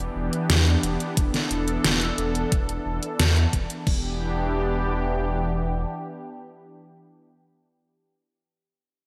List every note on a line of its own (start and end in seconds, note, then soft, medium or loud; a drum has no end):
0.00 3.83 E3 medium
0.00 3.83 B3 medium
0.00 3.83 D4 medium
0.00 1.13 G4 loud
0.16 0.29 E1 medium
0.33 closed hi-hat soft
0.50 0.76 E2 medium
0.50 snare loud
0.50 closed hi-hat medium
0.67 closed hi-hat soft
0.83 0.97 E1 medium
0.83 closed hi-hat medium
1.00 closed hi-hat soft
1.17 1.30 E1 loud
1.17 3.84 A4 loud
1.17 kick loud
1.17 closed hi-hat medium
1.34 snare soft
1.34 closed hi-hat soft
1.51 1.77 E1 loud
1.51 closed hi-hat medium
1.68 closed hi-hat soft
1.84 2.11 E1 medium
1.84 snare loud
1.84 closed hi-hat medium
2.01 closed hi-hat soft
2.18 2.45 E1 medium
2.18 closed hi-hat medium
2.35 closed hi-hat soft
2.52 2.79 E1 medium
2.52 kick loud
2.52 closed hi-hat medium
2.69 closed hi-hat soft
2.86 2.99 E1 medium
3.03 closed hi-hat soft
3.19 3.46 E2 medium
3.19 snare loud
3.19 closed hi-hat medium
3.36 closed hi-hat soft
3.53 3.66 E1 medium
3.53 kick medium
3.53 closed hi-hat medium
3.70 closed hi-hat soft
3.87 5.85 E1 medium
3.87 7.32 E3 medium
3.87 7.32 B3 medium
3.87 7.32 D4 medium
3.87 7.32 G4 medium
3.87 kick loud
3.87 crash medium